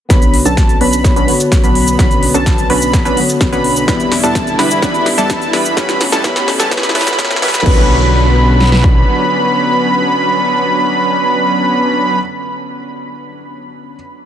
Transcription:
0.09 analog synth bass B1, felt piano D3 B3 F#4 C#5, supersaw synth F#3 B3 C#4 D4 B4, string section B3, analog synth lead B5, kick, snare, closed hi-hat, riser, shaker
0.22 closed hi-hat, shaker
0.34 open hi-hat
0.45 analog synth bass B1, supersaw synth F#3 B3 C#4 D4 A4, analog synth lead A5, closed hi-hat, shaker
0.57 kick, snare, closed hi-hat, shaker
0.69 closed hi-hat, shaker
0.81 analog synth bass B1, supersaw synth F#3 B3 C#4 D4 B4, analog synth lead B5, open hi-hat
0.93 closed hi-hat, shaker
1.04 felt piano B3 D4 F#4 C#5, kick, snare, closed hi-hat, shaker
1.16 analog synth bass B1, supersaw synth F#3 B3 C#4 D4 B4, analog synth lead B5, closed hi-hat, shaker
1.27 felt piano D3 B3 F#4 C#5, open hi-hat
1.40 closed hi-hat, shaker
1.52 kick, snare, closed hi-hat, shaker
1.64 analog synth bass B1, supersaw synth F#3 B3 C#4 D4 B4, analog synth lead B5, closed hi-hat, shaker
1.75 open hi-hat
1.87 closed hi-hat, shaker
1.98 analog synth bass B1, felt piano D3 B3 F#4 C#5, supersaw synth F#3 B3 C#4 D4 B4, analog synth lead B5, kick, snare, closed hi-hat, shaker
2.11 closed hi-hat, shaker
2.23 open hi-hat
2.34 analog synth bass B1, supersaw synth F#3 B3 C#4 D4 A4, analog synth lead A5, closed hi-hat, shaker
2.46 kick, snare, closed hi-hat, shaker
2.58 closed hi-hat, shaker
2.70 analog synth bass B1, supersaw synth F#3 B3 C#4 D4 B4, analog synth lead B5, open hi-hat
2.82 closed hi-hat, shaker
2.93 kick, snare, closed hi-hat, shaker
3.05 analog synth bass B1, supersaw synth F#3 B3 C#4 D4 B4, analog synth lead B5, closed hi-hat, shaker
3.16 felt piano D3 B3 F#4 C#5, open hi-hat
3.29 closed hi-hat, shaker
3.41 kick, snare, closed hi-hat, shaker
3.52 analog synth bass B1, supersaw synth F#3 B3 C#4 D4 B4, analog synth lead B5, closed hi-hat, shaker
3.64 open hi-hat
3.76 closed hi-hat, shaker
3.87 analog synth bass E1, string section D3 G3 E4, supersaw synth G3 B3 D4 E4 B4, felt piano B3 E4 G4 D5, analog synth lead B5, kick, snare, closed hi-hat, shaker
4.00 closed hi-hat, shaker
4.12 snare, open hi-hat
4.23 analog synth bass E1, supersaw synth G3 B3 D4 E4 A4, analog synth lead A5, closed hi-hat, shaker
4.35 kick, snare, closed hi-hat, shaker
4.47 closed hi-hat, shaker
4.59 analog synth bass E1, supersaw synth G3 B3 D4 E4 B4, analog synth lead B5, snare, open hi-hat
4.71 closed hi-hat, shaker
4.81 analog synth bass E1, supersaw synth G3 B3 D4 E4 B4, felt piano B3 E4 G4 D5, analog synth lead B5, kick, snare, closed hi-hat, shaker
4.94 closed hi-hat, shaker
5.06 snare, open hi-hat
5.18 analog synth bass E2, supersaw synth G3 B3 D4 E4 A4, analog synth lead A5, closed hi-hat, shaker
5.30 kick, snare, closed hi-hat, shaker
5.42 closed hi-hat, shaker
5.53 analog synth bass E2, supersaw synth G3 B3 D4 E4 B4, analog synth lead B5, snare, open hi-hat
5.65 closed hi-hat, shaker
5.76 analog synth bass A1, string section B2 A3 C#4, supersaw synth G3 B3 C#4 E4 B4, felt piano B3 E4 G4 C#5, analog synth lead B5, kick, snare, closed hi-hat, shaker
5.89 snare, closed hi-hat, shaker
6.01 snare, open hi-hat
6.12 analog synth bass A1, supersaw synth G3 B3 C#4 E4 A4, analog synth lead A5, snare, shaker
6.23 analog synth bass A1, supersaw synth G3 B3 C#4 E4 B4, felt piano B3 E4 G4 C#5, analog synth lead B5, kick, snare, closed hi-hat, shaker
6.36 snare, closed hi-hat, shaker
6.48 snare, open hi-hat
6.60 analog synth bass A1, supersaw synth G3 B3 C#4 E4 A4, analog synth lead A5, snare, shaker
6.70 analog synth bass A1, supersaw synth G3 B3 C#4 E4 B4, felt piano B3 E4 G4 C#5, analog synth lead B5, kick, snare, closed hi-hat, shaker
6.77 snare
6.83 snare, closed hi-hat, shaker
6.89 snare
6.94 analog synth bass A1, supersaw synth G3 B3 C#4 E4 B4, felt piano B3 E4 G4 C#5, analog synth lead B5, snare, open hi-hat
7.01 snare
7.07 snare, closed hi-hat, shaker
7.13 snare
7.17 analog synth bass A2, supersaw synth G3 B3 C#4 E4 B4, felt piano B3 E4 G4 C#5, analog synth lead B5, kick, snare, closed hi-hat, shaker
7.25 snare
7.30 snare, closed hi-hat, shaker
7.36 snare
7.41 analog synth bass A2, supersaw synth G3 B3 C#4 E4 B4, felt piano B3 E4 G4 C#5, analog synth lead B5, snare, open hi-hat
7.48 snare
7.54 snare, closed hi-hat, shaker
7.60 snare
7.64 analog synth bass B1, felt piano D3 B3 F#4 C#5, supersaw synth F#3 B3 C#4 D4 B4, string section B3, kick, crash
8.60 snare
8.72 snare
8.84 kick

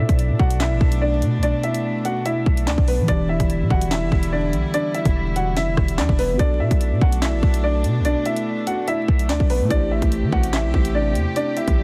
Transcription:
Already playing: synth keys B2 B3 A4 D5, string section B2 A3 D4
0.00 grand piano E4 E5
0.09 808-style bass B1, kick, closed hi-hat
0.19 closed hi-hat
0.30 808-style bass B2
0.39 808-style bass B1, grand piano F#4 F#5, kick
0.50 closed hi-hat
0.60 grand piano E4 E5, snare, clap, closed hi-hat
0.71 808-style bass A1
0.81 808-style bass B1, kick
0.92 closed hi-hat
1.01 grand piano D4 D5
1.22 808-style bass B2, closed hi-hat
1.38 808-style bass B1
1.43 grand piano D4 D5, closed hi-hat
1.64 grand piano E4 E5, closed hi-hat
1.74 closed hi-hat
2.05 grand piano F#4 F#5, closed hi-hat
2.25 grand piano E4 E5, closed hi-hat
2.46 808-style bass B1, kick
2.57 closed hi-hat
2.67 808-style bass D2, grand piano D4 D5, snare, clap
2.78 808-style bass B1, kick
2.88 grand piano B3 B4, open hi-hat
2.99 808-style bass B2
3.03 synth keys E3 B3
3.08 808-style bass E1, string section D3 G3 E4, grand piano D4 D5, synth keys G4, kick, closed hi-hat
3.14 synth keys D5
3.29 grand piano E4 E5
3.40 808-style bass E1, kick, closed hi-hat
3.50 closed hi-hat
3.61 808-style bass B2
3.70 808-style bass E1, grand piano F#4 F#5, kick
3.81 closed hi-hat
3.91 grand piano E4 E5, snare, clap, closed hi-hat
4.02 808-style bass F#1
4.12 808-style bass E1, kick
4.23 closed hi-hat
4.32 grand piano D4 D5
4.53 808-style bass B1, closed hi-hat
4.74 grand piano D4 D5, closed hi-hat
4.95 grand piano E4 E5, closed hi-hat
5.05 808-style bass E1, kick, closed hi-hat
5.36 grand piano F#4 F#5, closed hi-hat
5.57 808-style bass F#1, grand piano E4 E5, snare, closed hi-hat
5.68 808-style bass E1
5.77 808-style bass E1, kick, cross-stick
5.88 closed hi-hat
5.98 808-style bass E2, grand piano D4 D5, snare, clap
6.09 808-style bass E1, kick
6.19 grand piano B3 B4, open hi-hat
6.30 808-style bass G1
6.34 synth keys B3 F#4
6.39 808-style bass B1, string section B2 A3 D4, grand piano D4 D5, synth keys A4, kick, closed hi-hat
6.45 synth keys D5
6.60 808-style bass B2, grand piano E4 E5
6.71 808-style bass B1, kick, closed hi-hat
6.81 closed hi-hat
6.92 808-style bass B2
7.01 808-style bass B1, grand piano F#4 F#5, kick
7.12 closed hi-hat
7.22 grand piano E4 E5, snare, clap, closed hi-hat
7.33 808-style bass A1
7.43 808-style bass B1, kick
7.54 closed hi-hat
7.64 grand piano D4 D5
7.84 808-style bass B2, closed hi-hat
8.00 808-style bass B1
8.05 grand piano D4 D5, closed hi-hat
8.26 grand piano E4 E5, closed hi-hat
8.37 closed hi-hat
8.67 grand piano F#4 F#5, closed hi-hat
8.88 grand piano E4 E5, closed hi-hat
9.08 808-style bass B1, kick
9.19 closed hi-hat
9.29 808-style bass D2, grand piano D4 D5, snare, clap
9.40 808-style bass B1, kick
9.50 grand piano B3 B4, open hi-hat
9.61 808-style bass B2
9.65 synth keys A3 E4
9.70 808-style bass A1, string section C3 G4, grand piano D4 D5, synth keys G4, kick, closed hi-hat
9.76 synth keys C5
9.91 grand piano E4 E5
10.02 808-style bass A1, kick, closed hi-hat
10.12 closed hi-hat
10.23 808-style bass E3
10.33 808-style bass A1, grand piano F#4 F#5, kick
10.43 closed hi-hat
10.53 grand piano E4 E5, snare, clap, closed hi-hat
10.64 808-style bass B1
10.74 808-style bass A1, kick
10.85 closed hi-hat
10.95 grand piano D4 D5
11.15 808-style bass E2, closed hi-hat
11.36 grand piano D4 D5, closed hi-hat
11.57 grand piano E4 E5, closed hi-hat
11.68 808-style bass A1, kick, closed hi-hat

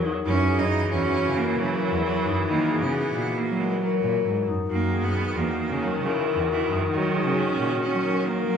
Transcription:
Already playing: cello E2, viola F#3, harp F#4 G#4 A#4
0.04 harp D#4
0.25 cello F#2 C#4, viola E3, harp F#4
0.48 harp G#4
0.59 cello F#2 D#4
0.91 cello E2 C#4, harp F#4
1.25 cello C#3
1.37 cello A#3, harp A#4
1.59 cello C#3 F#3, harp A#4
1.92 cello E2
2.03 cello F#3, harp F#4
2.25 cello F#2, harp D#4
2.48 cello D#3 A#3, harp F#4
2.70 harp G#4
2.81 cello C#3 B3
3.13 cello A#2, harp F#4
3.38 cello A#3
3.47 cello F#3
3.59 cello G#3, harp A#4
3.81 cello F#3, harp A#4
4.02 cello A#2
4.25 cello G#2, harp F#4
4.47 cello F#2, harp D#4
4.69 cello F#2 A#3, viola D#3, harp F#4
4.92 harp G#4
5.02 cello F#2 B3
5.35 cello E2 A#3, harp F#4
5.69 cello C#3
5.80 cello F#3, harp A#4
6.02 cello C#3 E3, harp A#4
6.35 cello E2
6.47 cello E3, harp F#4
6.68 cello F#2, harp D#4
6.90 cello D#3 F#3, harp F#4
7.13 harp G#4
7.24 cello C#3
7.39 cello C#4
7.57 cello A#2, harp F#4
7.82 cello C#4
7.90 cello F#3
8.02 harp A#4
8.24 cello A#3, harp A#4
8.46 cello F#3

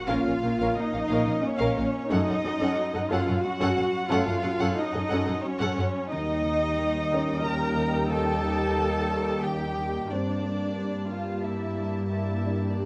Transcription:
Already playing: harp F3, cello section F#4, felt piano A#4 A#5, impact
0.08 double bass section A#1, harp A#2, french horn section A#3 C#4, viola section C#4 A#4, cello section F4, violin section F5
0.25 double bass section A#1, viola section C#4 A#4, violin section F5
0.42 double bass section A#1, harp A#2, viola section C#4 A#4, violin section F5
0.58 double bass section A#1, viola section C#4 A#4, violin section F5
0.77 harp A#2, cello section D#4, violin section D#5
0.92 double bass section A#1, viola section C#4 A#4, violin section F5
1.08 double bass section A#1, harp A#2, viola section C#4 A#4, violin section F5
1.26 double bass section A#1, viola section C#4 A#4, violin section F5
1.41 harp A#2, cello section C#4, violin section C#5, felt piano D#5
1.58 double bass section A#1, viola section C#4 A#4, violin section F5
1.77 double bass section A#1, harp A#2, viola section C#4 A#4, violin section F5
2.10 harp F#2, double bass section F#2, french horn section A3 C#4, viola section C#4 A4, cello section D#4, violin section D#5 F#5
2.27 double bass section F#2, viola section C#4 A4, violin section F#5
2.43 harp F#2, double bass section F#2, viola section C#4 A4, violin section F#5
2.60 double bass section F#2, viola section C#4 A4, violin section F#5
2.78 harp F#2
2.93 double bass section F#2, viola section C#4 A4, violin section F#5
3.10 harp F#2, double bass section F#2, viola section C#4 A4, cello section F4, violin section F5 F#5
3.27 double bass section F#2, viola section C#4 A4, violin section F#5
3.44 harp F#2, cello section F#4, violin section F#5
3.60 double bass section F#2, viola section C#4 A4, violin section F#5
3.76 double bass section F#2, harp F#2, viola section C#4 A4, violin section F#5
4.10 double bass section F#2, harp F#2, french horn section A3 C#4, viola section C#4 A4, cello section F4, felt piano A4 A5, violin section F5 F#5
4.26 double bass section F#2, viola section C#4 A4, violin section F#5
4.42 double bass section F#2, harp F#2, viola section C#4 A4, violin section F#5
4.58 double bass section F#2, viola section C#4 A4, violin section F#5
4.77 harp F#2, cello section D#4, violin section D#5
4.92 double bass section F#2, viola section C#4 A4, violin section F#5
5.09 double bass section F#2, harp F#2, viola section C#4 A4, violin section F#5
5.26 double bass section F#2, viola section C#4 A4, violin section F#5
5.45 harp F#2, cello section C#4, violin section C#5
5.60 double bass section F#2, viola section C#4 A4, violin section F#5
5.77 double bass section F#2, harp F#2, viola section C#4 A4, violin section F#5
6.09 double bass section D#2, harp D#3, french horn section G3 A#3, cello section D#4, viola section D#4 G4, violin section D#5 G5
6.45 harp D#3
6.78 harp D#3
7.12 harp D#3, felt piano C#4 C#5
7.44 harp D#3, cello section A#4, violin section A#5
7.77 harp D#3
8.09 harp D#3, cello section A4, violin section A5
8.44 harp D#3
8.78 harp D#3
9.10 harp D#3
9.42 harp D#3, cello section G4, violin section G5
9.78 harp D#3
10.10 double bass section G2, harp G2, french horn section G3 A#3, viola section A#3 G4, felt piano C4 C5, cello section D4, violin section D5 A5
10.44 harp G2
10.77 harp G2
11.10 harp G2, cello section F4, violin section F5
11.43 harp G2, cello section E4, violin section E5
11.79 harp G2
12.08 harp G2, cello section E4, violin section E5
12.43 harp G2, felt piano D4 D5
12.75 harp G2, cello section D4, violin section D5

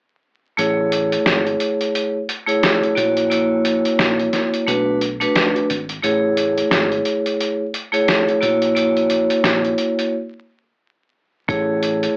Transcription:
0.57 fingered electric bass A1, vibraphone A3 E4 G#4 C#5, closed hi-hat
0.92 closed hi-hat
1.12 closed hi-hat
1.26 fingered electric bass G#1, snare, closed hi-hat
1.47 closed hi-hat
1.60 closed hi-hat
1.81 closed hi-hat
1.95 closed hi-hat
2.29 closed hi-hat
2.47 vibraphone A3 E4 G#4 C#5, closed hi-hat
2.63 snare, closed hi-hat
2.83 closed hi-hat
2.95 fingered electric bass A#1, vibraphone A#3 E4 F#4 C#5, closed hi-hat
3.17 closed hi-hat
3.30 vibraphone A#3 E4 F#4 C#5, closed hi-hat
3.65 closed hi-hat
3.85 closed hi-hat
3.99 fingered electric bass A#1, snare, closed hi-hat
4.19 closed hi-hat
4.33 snare, closed hi-hat
4.54 closed hi-hat
4.67 fingered electric bass B1, vibraphone A3 D4 F#4 B4, closed hi-hat
5.01 closed hi-hat
5.20 vibraphone A3 D4 F#4 B4, closed hi-hat
5.35 snare, closed hi-hat
5.56 closed hi-hat
5.70 fingered electric bass G#1, closed hi-hat
5.89 closed hi-hat
6.02 fingered electric bass A1, vibraphone A3 E4 G#4 C#5, closed hi-hat
6.37 closed hi-hat
6.58 closed hi-hat
6.71 fingered electric bass G#1, snare, closed hi-hat
6.92 closed hi-hat
7.05 closed hi-hat
7.26 closed hi-hat
7.41 closed hi-hat
7.74 closed hi-hat
7.92 vibraphone A3 E4 G#4 C#5, closed hi-hat
8.08 snare, closed hi-hat
8.29 closed hi-hat
8.41 fingered electric bass A#1, vibraphone A#3 E4 F#4 C#5, closed hi-hat
8.62 closed hi-hat
8.75 vibraphone A#3 E4 F#4 C#5, closed hi-hat
8.97 closed hi-hat
9.10 closed hi-hat
9.30 closed hi-hat
9.44 fingered electric bass A#1, snare, closed hi-hat
9.65 closed hi-hat
9.78 closed hi-hat
9.99 closed hi-hat
11.48 fingered electric bass A1, vibraphone A3 E4 G#4 C#5, kick, closed hi-hat
11.83 closed hi-hat
12.03 closed hi-hat

